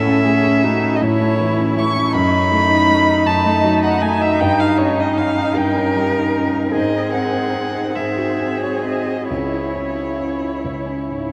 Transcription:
Already playing: A2 C#4 A4 E5
0.07 C#4
0.25 A3 C#4 G#4
0.44 C#4
0.64 A3 D#4 F#4
0.83 C#4
0.96 D#5
1.02 A2 E4 C#5
1.20 A3
1.40 E3
1.58 C#4
1.77 A3 C#6
1.96 C#4
2.14 F#2 D#4 B5
2.33 D#4
2.52 A3
2.70 D#4
2.89 A3
3.07 D#4
3.25 F#2 A5
3.46 A3
3.64 F#3
3.84 D#4 F#5
4.02 A3 G#5
4.21 D#4 E5
4.39 G2 D#4 G5
4.60 D#4 F5
4.78 C#4 C#5
4.98 D#4 D#5
5.17 C#4 F5
5.37 D#4
5.55 G2 A#4 G5
5.76 C#4
5.96 G3
6.16 D#4
6.36 C#4
6.55 D#4
6.73 G#2 C4 G#4 D#5
6.95 D#4
7.13 C4 F#5
7.34 D#4
7.54 C4
7.75 D#4
7.95 G#2 G#4 E5
8.18 F#4
8.39 C4
8.62 F#4 C#5
8.84 C4 D#5
9.06 F#4
9.29 C#2 E4 C#5
9.54 E4
9.76 C#4
9.98 E4
10.20 C#4
10.41 E4
10.64 C#2
10.86 C#4
11.09 G#2

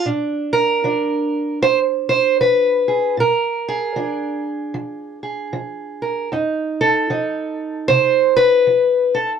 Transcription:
0.06 A#2 D4
0.53 A#4
0.84 F3 D4
1.62 F3 C5
2.09 C5
2.41 F3 B4
2.88 G#4
3.17 A#2 A#4
3.68 G#4
3.96 F3 D4
4.74 F3
5.23 G#4
5.53 F3
6.02 A#4
6.32 F2 D#4
6.81 A4
7.10 F3 D#4
7.88 C3 C5
8.37 B4
8.67 F3
9.15 A4

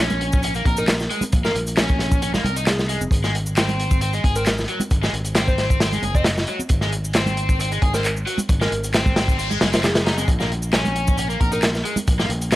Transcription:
Already playing: A#1
0.00 C#4
0.10 closed hi-hat, high conga, low conga, shaker
0.21 closed hi-hat
0.32 kick, shaker
0.43 C#4, closed hi-hat, shaker
0.55 A#3, closed hi-hat, shaker
0.65 A#1 A#4, kick, closed hi-hat, high conga
0.77 D#4 A#4, closed hi-hat, shaker
0.88 A#4, snare, clap, closed hi-hat, shaker
1.00 snare, shaker
1.10 G#3, closed hi-hat
1.21 closed hi-hat, high conga, low conga, shaker
1.32 A#1, kick, closed hi-hat, shaker
1.45 A#3 A#4, snare, shaker
1.55 A#1, closed hi-hat
1.67 closed hi-hat, shaker
1.77 C#4, snare, clap, closed hi-hat, shaker
1.89 kick, high conga, shaker
1.99 snare, closed hi-hat
2.12 kick, shaker
2.22 C#4, closed hi-hat, shaker
2.34 A#3, snare, low conga, shaker
2.44 C2 A#4, closed hi-hat, high conga, low conga
2.56 D#4, closed hi-hat, shaker
2.67 G#4, snare, clap, closed hi-hat, shaker
2.79 snare, shaker
2.89 G#3, closed hi-hat
3.01 F1, high conga, shaker
3.11 G#1, kick, closed hi-hat, shaker
3.24 G#3, snare, shaker
3.35 closed hi-hat
3.46 shaker
3.57 C4, snare, clap, closed hi-hat, shaker
3.68 closed hi-hat, high conga, low conga, shaker
3.79 closed hi-hat
3.91 kick, shaker
4.01 C4, closed hi-hat, shaker
4.13 G#3, closed hi-hat, shaker
4.24 G#1 G#4, kick, closed hi-hat, high conga
4.36 C4 A#4, closed hi-hat, shaker
4.46 A#4, snare, clap, closed hi-hat, shaker
4.58 snare, shaker
4.68 F#3, closed hi-hat
4.80 closed hi-hat, high conga, low conga, shaker
4.91 G#1, kick, closed hi-hat, shaker
5.03 G#3, snare, shaker
5.13 G#1, closed hi-hat
5.25 closed hi-hat, shaker
5.35 C4, snare, clap, closed hi-hat, shaker
5.47 C5, kick, high conga, shaker
5.58 C5, snare, closed hi-hat
5.70 kick, shaker
5.80 C4, snare, closed hi-hat, shaker
5.92 G#3, closed hi-hat, low conga, shaker
6.02 F#1 G#4, closed hi-hat, high conga, low conga
6.15 C4 D#5, kick, shaker
6.24 snare, clap, closed hi-hat, shaker
6.37 snare, shaker
6.47 F#3, closed hi-hat
6.59 high conga, shaker
6.69 G#1, kick, closed hi-hat, shaker
6.81 G#3, snare, shaker
6.92 closed hi-hat
7.05 shaker
7.13 C4, snare, clap, closed hi-hat, shaker
7.26 closed hi-hat, high conga, low conga, shaker
7.37 closed hi-hat
7.49 kick, shaker
7.60 C4, closed hi-hat, shaker
7.72 G#3, closed hi-hat, shaker
7.82 G#1 G#4, kick, closed hi-hat, high conga
7.94 C4 A#4, snare, shaker
8.04 A#4, clap, closed hi-hat, shaker
8.17 shaker
8.27 F#3, closed hi-hat
8.38 closed hi-hat, high conga, low conga, shaker
8.49 G#1, kick, closed hi-hat, noise sweep, shaker
8.61 G#3 A#4, snare, shaker
8.72 G#1, closed hi-hat
8.84 closed hi-hat, shaker
8.94 C4, snare, clap, closed hi-hat, shaker
9.06 kick, high conga, low conga, shaker
9.16 snare, closed hi-hat
9.28 kick, shaker
9.39 C4, closed hi-hat, shaker
9.51 G#3, low conga, shaker
9.61 F#1 G#3, snare, closed hi-hat, high conga, low conga
9.73 C4, snare, closed hi-hat, shaker
9.83 G#4, snare, clap, closed hi-hat, shaker
9.95 snare, closed hi-hat, shaker
10.06 D#4, snare, closed hi-hat
10.18 G#3, closed hi-hat, high conga, shaker
10.28 A#1, kick, closed hi-hat, shaker
10.40 A#3, snare, shaker
10.52 closed hi-hat
10.62 shaker
10.73 C#4, snare, clap, closed hi-hat, shaker
10.85 closed hi-hat, high conga, low conga, shaker
10.96 closed hi-hat
11.08 kick, shaker
11.18 C#4, closed hi-hat, shaker
11.30 A#3, closed hi-hat, shaker
11.40 A#1 A#4, kick, closed hi-hat, high conga
11.52 D#4 A#4, closed hi-hat, shaker
11.62 A#4, snare, clap, closed hi-hat, shaker
11.75 snare, shaker
11.85 G#3, closed hi-hat
11.96 closed hi-hat, high conga, low conga, shaker
12.08 A#1, kick, closed hi-hat, shaker
12.19 A#3, snare, shaker
12.29 A#1, closed hi-hat
12.42 closed hi-hat, shaker
12.52 C#4, snare, clap, closed hi-hat, shaker

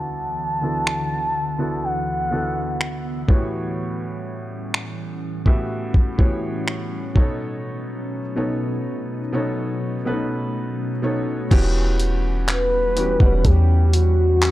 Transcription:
Already playing: D2 D3 E3 B3 E4 F#4 D5 F#5 A5
0.62 D3 B3 E4 F#4 A4
0.87 finger snap
1.58 D3 B3 E4 F#4 A4
1.84 F#5
2.31 D3 B3 E4 F#4 A4
2.81 finger snap
3.28 A2 E3 G3 B3 C#4 F#4 G4 C#5, kick
4.74 finger snap
5.46 A2 E3 B3 F#4 G4 E5, kick
5.94 kick
6.18 A2 E3 B3 F#4 G4 C#5, kick
6.68 finger snap
7.15 B2 F#3 A3 B3 D#4 A4 C#5, kick
8.36 B2 B3 D#4 A4 C#5
9.32 B2 B3 D#4 A4 C#5
10.05 B2 B3 C#4 A4 B4
10.13 D#4
11.02 B2 B3 D#4 A4 C#5
11.51 E1 E3 G3 B3 C#4 F#4 G4 F#5, kick, closed hi-hat, crash
12.00 closed hi-hat
12.48 B4, clap, closed hi-hat
12.96 E3 B3 C#4 F#4 G4, closed hi-hat
13.20 E1 E3 G3 B3 C#4 F#5, kick
13.45 E2 G4, kick, closed hi-hat
13.93 F#4, closed hi-hat
14.42 clap, closed hi-hat

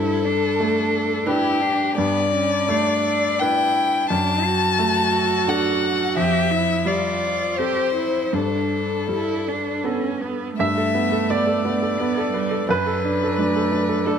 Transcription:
Already playing: G2 E4 A4
0.24 D4
0.60 A3
1.26 D4 E4 G4 B4
1.61 D4
1.97 G2 B3 D5
2.35 C#4
2.69 A3 D4
3.40 D4 E4 B4 G5
4.10 F#2 D4 A5
4.45 F#4
4.79 A3
5.47 D4 A4 F#5
6.16 F2 G4 E5
6.51 E4
6.85 G3 F4 D5
7.58 C4 G4 A4 C5
7.96 E4
8.33 G2 D4 A4
9.09 G3 E4
9.48 D4
9.84 B3 C#4 A4
10.22 B3
10.58 G2 A3 E5
10.77 A4
10.94 B3
11.12 A4
11.30 B3 D5
11.47 A4
11.65 B3
11.82 A4
11.99 B3
12.17 A4
12.33 G3 B4
12.50 A4
12.67 F#2 F#3 B4
12.86 A4
13.04 D4
13.23 A4
13.37 A3 D4
13.56 A4
13.72 D4
13.88 A4
14.06 A3 D4 A4

